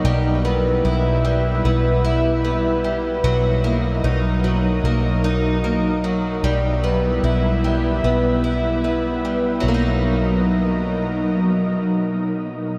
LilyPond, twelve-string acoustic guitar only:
\new Staff \with { instrumentName = "Twelve-string acoustic guitar" } { \time 4/4 \key b \major \tempo 4 = 75 g8 b8 e'8 g8 b8 e'8 b8 g8 | fis8 ais8 dis'8 fis8 ais8 dis'8 ais8 fis8 | g8 b8 e'8 g8 b8 e'8 b8 g8 | <fis ais dis'>1 | }